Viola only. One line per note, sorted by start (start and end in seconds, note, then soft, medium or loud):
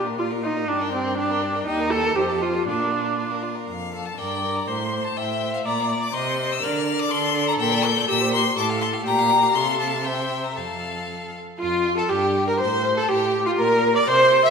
0.18 0.26 F4 medium
0.43 0.70 D#4 medium
0.68 0.92 D4 medium
0.93 1.17 C4 medium
1.18 1.66 D4 medium
1.67 1.92 D#4 medium
1.91 2.17 A4 loud
2.16 2.44 G4 medium
2.42 2.67 F4 medium
2.67 3.42 D4 medium
4.19 4.69 D5 medium
4.68 5.19 C5 medium
5.17 5.67 E5 medium
5.66 6.14 D5 medium
6.14 6.62 C5 medium
6.63 7.10 A#4 medium
7.11 8.10 A4 medium
8.08 8.56 G4 medium
8.57 9.05 A4 medium
9.07 9.57 G4 medium
9.56 10.06 A4 medium
10.06 10.56 C5 medium
10.57 11.33 A4 soft
11.60 11.95 F4 medium
11.98 12.11 A4 medium
12.10 12.47 G4 medium
12.48 12.60 A#4 medium
12.60 12.99 C5 medium
12.97 13.10 A4 medium
13.09 13.48 G4 medium
13.46 13.60 F4 medium
13.58 13.95 A#4 loud
13.95 14.00 D5 medium
14.08 14.44 C5 loud
14.45 14.50 E5 loud